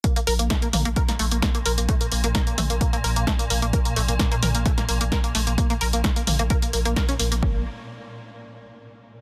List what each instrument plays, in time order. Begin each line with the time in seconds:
0.04 synth drone A#2, synth arpeggio sound A#3, kick, closed hi-hat
0.16 synth arpeggio sound A#3, closed hi-hat
0.27 sub bass A#1, synth arpeggio sound A#4, open hi-hat
0.39 sub bass A#1, synth arpeggio sound A#3, closed hi-hat
0.50 synth arpeggio sound A3, kick, snare, closed hi-hat
0.62 synth arpeggio sound A#3, closed hi-hat
0.73 sub bass A#1, synth arpeggio sound A#3, open hi-hat, mid tom
0.85 sub bass A#1, synth arpeggio sound A#3, closed hi-hat
0.96 synth arpeggio sound A#4, kick, closed hi-hat
1.08 synth arpeggio sound A#3, snare, closed hi-hat
1.19 sub bass A#1, synth arpeggio sound A3, open hi-hat
1.31 sub bass A#1, synth arpeggio sound A#3, closed hi-hat
1.42 synth arpeggio sound A#3, kick, snare, closed hi-hat
1.55 synth arpeggio sound A#3, closed hi-hat
1.66 sub bass A#1, synth arpeggio sound A#4, open hi-hat
1.78 sub bass A#1, synth arpeggio sound A#3, closed hi-hat
1.89 synth arpeggio sound A3, kick, closed hi-hat
2.01 synth arpeggio sound A#3, closed hi-hat
2.12 sub bass A#1, synth arpeggio sound A#3, open hi-hat
2.24 sub bass A#1, synth arpeggio sound A#3, closed hi-hat
2.35 synth arpeggio sound A#4, kick, snare, closed hi-hat
2.47 synth arpeggio sound A#3, closed hi-hat
2.58 sub bass A#1, synth arpeggio sound A3, open hi-hat, mid tom
2.70 sub bass A#1, synth arpeggio sound A#3, closed hi-hat
2.81 synth arpeggio sound A#3, kick, closed hi-hat
2.93 synth arpeggio sound A#3, closed hi-hat
3.04 sub bass A#1, synth arpeggio sound A#4, open hi-hat
3.16 sub bass A#1, synth arpeggio sound A#3, closed hi-hat
3.27 synth arpeggio sound A3, kick, snare, closed hi-hat
3.39 synth arpeggio sound A#3, closed hi-hat
3.50 sub bass A#1, synth arpeggio sound A#3, open hi-hat
3.62 sub bass A#1, synth arpeggio sound A#3, closed hi-hat
3.73 synth arpeggio sound A#4, kick, closed hi-hat
3.85 synth arpeggio sound A#3, closed hi-hat
3.96 sub bass A#1, synth arpeggio sound A3, open hi-hat
4.08 sub bass A#1, synth arpeggio sound A#3, closed hi-hat
4.19 synth arpeggio sound A#3, kick, snare, closed hi-hat
4.32 synth arpeggio sound A#3, closed hi-hat
4.43 sub bass A#1, synth arpeggio sound A#4, open hi-hat, mid tom
4.55 sub bass A#1, synth arpeggio sound A#3, closed hi-hat
4.66 synth arpeggio sound A3, kick, closed hi-hat
4.78 synth arpeggio sound A#3, snare, closed hi-hat
4.89 sub bass A#1, synth arpeggio sound A#3, open hi-hat
5.01 sub bass A#1, synth arpeggio sound A#3, closed hi-hat
5.12 synth arpeggio sound A#4, kick, snare, closed hi-hat
5.24 synth arpeggio sound A#3, closed hi-hat
5.35 sub bass A#1, synth arpeggio sound A3, open hi-hat
5.47 sub bass A#1, synth arpeggio sound A#3, closed hi-hat
5.58 synth arpeggio sound A#3, kick, closed hi-hat
5.70 synth arpeggio sound A#3, closed hi-hat
5.81 sub bass A#1, synth arpeggio sound A#4, open hi-hat
5.93 sub bass A#1, synth arpeggio sound A#3, closed hi-hat
6.04 synth arpeggio sound A3, kick, snare, closed hi-hat
6.16 synth arpeggio sound A#3, closed hi-hat
6.27 sub bass A#1, synth arpeggio sound A#3, open hi-hat, mid tom
6.39 sub bass A#1, synth arpeggio sound A#3, closed hi-hat
6.50 synth arpeggio sound A#4, kick, closed hi-hat
6.62 synth arpeggio sound A#3, closed hi-hat
6.73 sub bass A#1, synth arpeggio sound A#3, open hi-hat
6.85 sub bass A#1, synth arpeggio sound A#3, closed hi-hat
6.96 synth arpeggio sound A#4, kick, snare, closed hi-hat
7.09 synth arpeggio sound C#4, closed hi-hat
7.19 sub bass A#1, synth arpeggio sound A#3, open hi-hat
7.32 sub bass A#1, synth arpeggio sound A#3, closed hi-hat
7.42 sub bass A#1, synth arpeggio sound A#3, kick